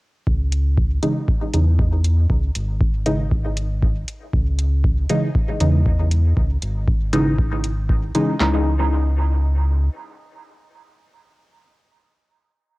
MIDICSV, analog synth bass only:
0, 0, Header, 1, 2, 480
1, 0, Start_track
1, 0, Key_signature, 4, "minor"
1, 0, Tempo, 508475
1, 251, Time_signature, 4, 2, 24, 8
1, 12070, End_track
2, 0, Start_track
2, 0, Title_t, "Analog synth bass"
2, 0, Program_c, 0, 38
2, 251, Note_on_c, 0, 37, 90
2, 939, Note_off_c, 0, 37, 0
2, 1451, Note_on_c, 0, 40, 93
2, 2139, Note_off_c, 0, 40, 0
2, 2170, Note_on_c, 0, 37, 87
2, 2371, Note_off_c, 0, 37, 0
2, 2411, Note_on_c, 0, 32, 82
2, 3819, Note_off_c, 0, 32, 0
2, 4091, Note_on_c, 0, 37, 90
2, 4779, Note_off_c, 0, 37, 0
2, 5291, Note_on_c, 0, 40, 98
2, 5979, Note_off_c, 0, 40, 0
2, 6012, Note_on_c, 0, 37, 93
2, 6211, Note_off_c, 0, 37, 0
2, 6252, Note_on_c, 0, 32, 85
2, 7659, Note_off_c, 0, 32, 0
2, 7932, Note_on_c, 0, 37, 93
2, 9334, Note_off_c, 0, 37, 0
2, 12070, End_track
0, 0, End_of_file